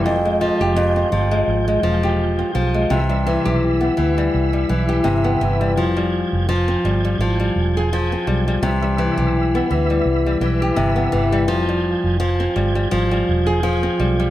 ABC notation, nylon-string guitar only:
X:1
M:4/4
L:1/16
Q:"Swing 16ths" 1/4=84
K:Flyd
V:1 name="Nylon-string guitar" clef=bass
F,, _A, F, G F,, C F, A,2 A, F, G2 C F, A, | C, G, E, G2 B, E, G,2 G, E, G C, B, E, G, | F, G, z2 F, C G, G, F, G, z _A F, C G, G, | C, G, E, G2 B, E, G,2 G, E, G C, B, E, G, |
F, G, z2 F, C G, G, F, G, z _A F, C G, G, |]